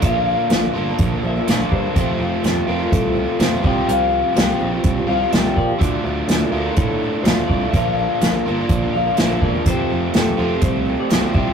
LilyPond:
<<
  \new Staff \with { instrumentName = "Clean electric guitar" } { \time 4/4 \key f \major \tempo 4 = 125 f''2 r8 e''8 d''8 c''8~ | c''4. bes'8 a'4 c''8 d''8 | f''2 r8 f''8 e''8 d''8~ | d''4. bes'8 a'4 c''8 d''8 |
f''2 r8 f''8 e''8 d''8 | c''4 a'4 c''8. d''8. e''8 | }
  \new Staff \with { instrumentName = "Steel-string acoustic guitar" } { \time 4/4 \key f \major <bes, d f bes d' bes'>8 <f bes d' bes'>8 <bes, d f bes d' bes'>8 <f bes d' bes'>16 <f bes d' bes'>8 <f bes d' bes'>16 <f bes d' bes'>16 <f bes d' bes'>16 <bes, d f bes d' bes'>8. <f bes d' bes'>16 | <f g c' f' a'>8 <g c' f' a'>8 <f g c' f' a'>8 <g c' f' a'>16 <c' f' a'>8 <c' f' a'>16 <g c' f' a'>16 <c' f' a'>16 <f g c' f' a'>8 <c f c' f' g'>8~ | <c f c' f' g'>8 <f c' f' g'>8 <c f c' f' g'>8 <f c' f' g'>16 <c' f' g'>8 <c' f' g'>16 <f c' f' g'>16 <c' f' g'>16 <c f c' f' g'>8. <c' f' g'>16 | <d f d' e' a'>8 <f d' e' a'>8 <d f d' e' a'>8 <f d' e' a'>16 <d' e' a'>8 <d' e' a'>16 <f d' e' a'>16 <d' e' a'>16 <d f d' a'>8. <d' e' a'>16 |
<bes, d f bes d' bes'>8 <f bes d' bes'>8 <bes, d f bes d' bes'>8 <f bes d' bes'>16 <f bes d' bes'>8 <f bes d' bes'>16 <f bes d' bes'>16 <f bes d' bes'>16 <bes, d f bes d' bes'>8. <f bes d' bes'>16 | <f c' g' a'>8 <f c' g' a'>8 <f c' g' a'>8 <f c' g' a'>16 <c' g' a'>8 <c' g' a'>16 <f c' g' a'>16 <c' g' a'>16 <f c' g' a'>8 <c f c' f' g'>8 | }
  \new Staff \with { instrumentName = "Overdriven electric guitar" } { \time 4/4 \key f \major <bes, d bes d' f'>4. <bes, d bes d' f'>4. <bes, d bes d' f'>4 | <f, c f a c' f'>4. <f, c f a c' f'>4. <f, c f a c' f'>8 <c f g c' f'>8~ | <c f g c' f'>4 <c f g c' f'>4. <c f g c' f'>4 r8 | <d a d' f'>4. <d a d' f'>4. <d a d' f'>4 |
<bes, d bes d' f'>4. <bes, d bes d' f'>4. <bes, d bes d' f'>4 | <f, c f a c' f'>4. <f, c f a c' f'>4. <f, c f a c' f'>8 <c f g c' f'>8 | }
  \new Staff \with { instrumentName = "Picked electric bass" } { \clef bass \time 4/4 \key f \major bes,,4 bes,,8 g,,8 bes,,8 bes,,8 bes,,8 g,8 | f,,8 f,,8 f,,8 f,,8 c,4 f,,8 c,8 | c,4 c,8 bes,,8 c,8 c,8 c,8 bes,8 | d,8 d,8 d,8 d,8 a,4 d,8 c,8 |
bes,,4 bes,,8 g,,8 bes,,8 bes,,8 bes,,8 e,,8 | f,,8 f,,8 f,,8 f,,8 c,4 b,,8 c,8 | }
  \new DrumStaff \with { instrumentName = "Drums" } \drummode { \time 4/4 <hh bd>4 <hh sn>4 <hh bd>4 <hh sn>8 bd8 | <hh bd>4 <hh sn>4 <hh bd>4 <hh sn>8 bd8 | hh4 <hh sn>4 <hh bd>4 <hh sn>8 bd8 | <hh bd>4 <hh sn>4 <hh bd>4 <hh sn>8 bd8 |
<hh bd>4 <hh sn>4 <hh bd>4 <hh sn>8 bd8 | <hh bd>4 <hh sn>4 <hh bd>4 <hh sn>8 bd8 | }
>>